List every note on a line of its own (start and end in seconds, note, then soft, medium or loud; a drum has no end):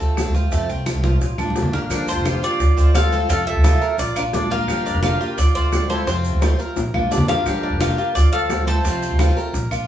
0.00 0.24 D2 medium
0.00 0.17 A3 soft
0.00 0.17 C4 soft
0.00 0.17 F4 soft
0.00 0.34 A4 medium
0.00 high bongo soft
0.00 high conga soft
0.00 maracas soft
0.17 0.34 D3 medium
0.17 0.34 A3 medium
0.17 0.34 C4 medium
0.17 0.33 F4 medium
0.17 high bongo medium
0.17 low bongo medium
0.17 high conga medium
0.17 claves medium
0.17 maracas medium
0.26 0.51 D2 medium
0.34 0.51 A3 soft
0.34 0.52 C4 soft
0.34 0.51 F4 medium
0.34 0.51 F4 soft
0.34 high bongo soft
0.34 high conga medium
0.34 maracas soft
0.52 0.68 F2 medium
0.52 0.68 C3 medium
0.52 0.69 F3 medium
0.52 0.69 A3 medium
0.52 0.68 C4 medium
0.52 0.67 F4 medium
0.52 high bongo medium
0.52 high conga soft
0.52 maracas medium
0.69 0.94 C2 medium
0.69 0.86 A3 soft
0.69 1.03 C4 medium
0.69 0.86 C4 soft
0.69 0.86 F4 soft
0.69 high bongo soft
0.69 high conga soft
0.69 maracas soft
0.86 1.20 C3 medium
0.86 1.20 F3 medium
0.86 1.21 A3 medium
0.86 1.21 C4 medium
0.86 1.21 F4 medium
0.86 high bongo medium
0.86 high conga medium
0.86 claves medium
0.86 maracas medium
0.94 1.20 C2 medium
1.04 1.38 F4 medium
1.04 high conga medium
1.04 maracas soft
1.20 1.37 A#1 medium
1.20 muted steel-string acoustic guitar stroke medium
1.20 high bongo medium
1.20 high conga soft
1.20 maracas medium
1.38 1.63 A#1 medium
1.38 1.55 A#3 soft
1.38 1.72 D4 medium
1.38 1.55 D4 soft
1.38 1.55 F4 medium
1.38 high bongo soft
1.38 high conga medium
1.38 claves medium
1.38 maracas soft
1.50 high conga medium
1.56 1.72 F3 medium
1.56 1.73 A#3 medium
1.56 1.73 D4 medium
1.56 1.72 F4 medium
1.56 high bongo medium
1.56 low bongo medium
1.56 maracas medium
1.62 1.89 A1 medium
1.62 low conga medium
1.73 1.90 A#3 medium
1.73 1.90 A#3 soft
1.73 1.90 D4 soft
1.73 1.90 F4 soft
1.73 low conga medium
1.73 maracas soft
1.90 2.15 G1 loud
1.90 2.23 D3 medium
1.90 2.24 F3 medium
1.90 2.24 A#3 medium
1.90 2.25 D4 medium
1.90 2.07 D4 medium
1.90 2.25 G4 medium
1.90 2.07 A#4 medium
1.90 high bongo medium
1.90 high conga soft
1.90 claves medium
1.90 maracas medium
2.08 2.25 D4 medium
2.08 2.41 F4 medium
2.08 2.43 C5 medium
2.08 high conga soft
2.08 maracas medium
2.16 2.33 F1 medium
2.25 2.42 D3 medium
2.25 2.42 F3 medium
2.25 2.42 A#3 medium
2.25 2.42 D4 medium
2.25 2.42 F4 medium
2.25 2.41 G4 medium
2.25 high bongo medium
2.25 high conga medium
2.25 claves medium
2.25 maracas medium
2.42 2.60 A#3 soft
2.42 2.60 D4 soft
2.42 2.77 F4 medium
2.42 2.92 F4 medium
2.42 2.59 G4 soft
2.42 2.92 D5 loud
2.42 high conga soft
2.42 maracas soft
2.59 2.76 D2 medium
2.59 muted steel-string acoustic guitar stroke medium
2.59 high bongo medium
2.59 high conga soft
2.59 maracas medium
2.77 3.27 D2 medium
2.77 2.94 A3 soft
2.77 2.94 C4 medium
2.77 2.94 F4 medium
2.77 3.11 C5 medium
2.77 high conga soft
2.77 maracas medium
2.95 3.11 D3 medium
2.95 3.12 A3 medium
2.95 3.12 C4 medium
2.95 3.11 F4 medium
2.95 3.27 A4 medium
2.95 3.27 F5 loud
2.95 high bongo medium
2.95 low bongo medium
2.95 high conga medium
2.95 claves medium
2.95 maracas medium
3.12 3.29 A3 medium
3.12 3.29 C4 medium
3.12 3.29 F4 medium
3.12 3.29 A4 medium
3.12 high conga medium
3.12 maracas soft
3.29 3.54 F2 loud
3.29 3.63 C3 medium
3.29 3.63 F3 medium
3.29 3.64 A3 medium
3.29 3.63 C4 medium
3.29 3.64 C4 medium
3.29 3.64 F4 medium
3.29 3.46 A4 medium
3.29 3.46 F5 loud
3.29 high bongo medium
3.29 high conga soft
3.29 maracas medium
3.47 3.96 A4 medium
3.47 3.95 E5 loud
3.47 high bongo soft
3.47 high conga soft
3.55 3.72 D2 loud
3.64 3.81 C3 medium
3.64 3.81 F3 medium
3.64 3.81 A3 medium
3.64 3.81 C4 medium
3.64 3.81 F4 medium
3.64 3.80 F4 medium
3.64 high bongo medium
3.64 high conga loud
3.64 claves medium
3.64 maracas medium
3.81 3.99 A3 soft
3.81 3.99 C4 soft
3.81 3.98 F4 soft
3.81 4.15 A#4 medium
3.81 high conga soft
3.81 maracas soft
3.98 4.15 A#1 medium
3.98 4.15 F4 medium
3.98 4.17 D5 loud
3.98 muted steel-string acoustic guitar stroke medium
3.98 high bongo medium
3.98 high conga soft
3.98 maracas medium
4.16 4.65 A#1 medium
4.16 4.33 A#3 soft
4.16 4.22 D4 medium
4.16 4.33 D4 medium
4.16 4.33 F4 medium
4.16 4.21 A#4 medium
4.16 high bongo soft
4.16 high conga soft
4.16 claves medium
4.16 maracas medium
4.33 4.50 F3 soft
4.33 4.50 A#3 medium
4.33 4.50 D4 medium
4.33 4.50 F4 medium
4.33 4.49 F4 medium
4.33 4.50 D5 medium
4.33 high bongo medium
4.33 low bongo medium
4.33 high conga medium
4.33 maracas medium
4.50 4.68 A#3 medium
4.50 4.68 D4 medium
4.50 4.67 F4 medium
4.50 4.85 F4 medium
4.50 5.00 A#4 medium
4.50 5.00 F5 loud
4.50 high bongo soft
4.50 high conga medium
4.50 maracas soft
4.68 4.93 G1 loud
4.68 5.02 D3 medium
4.68 5.02 F3 medium
4.68 5.03 A#3 medium
4.68 5.03 D4 medium
4.68 5.03 G4 medium
4.68 high bongo medium
4.68 high conga soft
4.68 claves medium
4.68 maracas medium
4.86 5.03 D4 medium
4.86 high conga soft
4.86 maracas medium
4.94 5.11 F1 loud
5.03 5.20 D3 medium
5.03 5.20 F3 medium
5.03 5.20 A#3 medium
5.03 5.20 D4 medium
5.03 5.19 F4 medium
5.03 5.19 G4 medium
5.03 5.36 A#4 medium
5.03 5.38 F5 medium
5.03 high bongo medium
5.03 high conga medium
5.03 claves medium
5.03 maracas medium
5.20 5.38 A#3 soft
5.20 5.37 D4 soft
5.20 5.54 F4 medium
5.20 5.37 G4 soft
5.20 high conga soft
5.20 maracas soft
5.38 5.54 D2 loud
5.38 5.54 F4 medium
5.38 5.54 D5 medium
5.38 muted steel-string acoustic guitar stroke medium
5.38 high bongo medium
5.38 high conga soft
5.38 maracas medium
5.55 6.05 D2 medium
5.55 5.72 A3 soft
5.55 5.72 C4 soft
5.55 5.72 F4 medium
5.55 5.88 F4 medium
5.55 5.89 C5 medium
5.55 5.87 D5 medium
5.55 high conga soft
5.72 5.89 D3 soft
5.72 5.90 A3 medium
5.72 5.89 C4 medium
5.72 5.89 F4 medium
5.72 high bongo medium
5.72 low bongo medium
5.72 high conga medium
5.72 claves medium
5.72 maracas medium
5.90 6.07 A3 medium
5.90 6.07 C4 medium
5.90 6.06 E4 medium
5.90 6.06 F4 medium
5.90 6.07 A4 medium
5.90 6.06 C5 medium
5.90 high conga medium
5.90 maracas soft
6.07 6.32 F2 loud
6.07 6.41 C3 medium
6.07 6.41 F3 medium
6.07 6.42 A3 medium
6.07 6.41 C4 medium
6.07 6.42 C4 medium
6.07 6.56 F4 medium
6.07 6.42 F4 medium
6.07 6.56 C5 medium
6.07 high bongo medium
6.07 high conga soft
6.07 maracas medium
6.24 high bongo soft
6.24 high conga soft
6.24 maracas medium
6.33 6.50 D2 loud
6.42 6.58 C3 medium
6.42 6.59 F3 medium
6.42 6.59 A3 medium
6.42 6.59 C4 medium
6.42 6.59 F4 medium
6.42 6.58 F4 medium
6.42 high bongo medium
6.42 high conga loud
6.42 claves medium
6.42 maracas medium
6.59 6.76 A3 soft
6.59 6.76 C4 soft
6.59 6.76 F4 soft
6.59 6.93 A#4 medium
6.59 high conga soft
6.59 maracas soft
6.76 6.93 A#1 loud
6.76 muted steel-string acoustic guitar stroke medium
6.76 high bongo loud
6.76 high conga soft
6.76 maracas medium
6.94 7.10 A#1 medium
6.94 7.12 A#3 soft
6.94 7.12 D4 soft
6.94 7.11 F4 medium
6.94 7.11 F4 soft
6.94 high conga medium
6.94 claves medium
7.11 7.27 A1 medium
7.11 7.29 F3 soft
7.11 7.29 A#3 medium
7.11 7.28 D4 medium
7.11 7.29 D4 medium
7.11 7.28 F4 medium
7.11 7.28 D5 medium
7.11 low bongo medium
7.11 maracas medium
7.17 low conga medium
7.28 7.44 G1 medium
7.28 7.46 A#3 medium
7.28 7.46 D4 medium
7.28 7.62 F4 medium
7.28 7.45 F4 medium
7.28 7.77 A#4 medium
7.28 7.77 F5 medium
7.28 low bongo loud
7.28 low conga medium
7.28 maracas soft
7.46 7.71 G1 loud
7.46 7.79 D3 medium
7.46 7.80 F3 medium
7.46 7.81 A#3 medium
7.46 7.81 D4 medium
7.46 7.81 G4 medium
7.46 high bongo medium
7.46 high conga soft
7.46 claves medium
7.46 maracas medium
7.63 7.80 D4 medium
7.63 high conga soft
7.72 7.89 F1 medium
7.80 7.97 D3 medium
7.80 7.98 F3 medium
7.80 7.98 A#3 medium
7.80 7.98 D4 medium
7.80 7.97 F4 medium
7.80 7.97 G4 medium
7.80 8.13 A#4 medium
7.80 8.13 F5 medium
7.80 high bongo medium
7.80 high conga medium
7.80 claves medium
7.80 maracas medium
7.98 8.16 A#3 soft
7.98 8.15 D4 soft
7.98 8.32 F4 medium
7.98 8.15 G4 soft
7.98 high conga soft
7.98 maracas soft
8.15 8.32 D2 loud
8.15 8.31 F4 medium
8.15 8.32 D5 medium
8.15 muted steel-string acoustic guitar stroke medium
8.15 high bongo medium
8.15 high conga soft
8.15 maracas medium
8.32 8.82 D2 medium
8.32 8.50 A3 soft
8.32 8.50 C4 soft
8.32 8.49 F4 soft
8.32 8.65 A4 medium
8.32 8.66 C5 medium
8.32 8.67 F5 loud
8.32 high conga soft
8.50 8.67 D3 medium
8.50 8.67 A3 medium
8.50 8.67 C4 medium
8.50 8.66 F4 medium
8.50 high bongo medium
8.50 low bongo medium
8.50 high conga medium
8.50 claves medium
8.50 maracas medium
8.67 8.85 A3 medium
8.67 8.85 C4 medium
8.67 8.84 F4 medium
8.67 8.84 A4 medium
8.67 9.33 C5 medium
8.67 9.33 A5 loud
8.67 high conga medium
8.67 maracas soft
8.84 9.09 F2 loud
8.84 9.18 C3 medium
8.84 9.19 F3 medium
8.84 9.19 A3 medium
8.84 9.18 C4 medium
8.84 9.20 C4 medium
8.84 9.20 F4 medium
8.84 high bongo medium
8.84 high conga soft
8.84 maracas medium
9.02 high bongo soft
9.02 high conga soft
9.02 maracas medium
9.10 9.27 D2 loud
9.19 9.36 C3 medium
9.19 9.36 F3 medium
9.19 9.37 A3 medium
9.19 9.36 C4 medium
9.19 9.36 F4 medium
9.19 9.35 F4 medium
9.19 high bongo medium
9.19 high conga medium
9.19 claves medium
9.19 maracas medium
9.36 9.54 A3 soft
9.36 9.54 C4 soft
9.36 9.53 F4 medium
9.36 9.70 A#4 medium
9.36 high conga soft
9.36 maracas soft
9.53 9.70 A#1 loud
9.53 muted steel-string acoustic guitar stroke medium
9.53 high bongo medium
9.53 high conga soft
9.53 maracas medium
9.71 9.87 A#1 medium
9.71 9.87 A#3 soft
9.71 9.87 D4 soft
9.71 9.87 F4 medium
9.71 9.87 F4 soft
9.71 high bongo soft
9.71 high conga soft
9.71 claves medium
9.71 maracas medium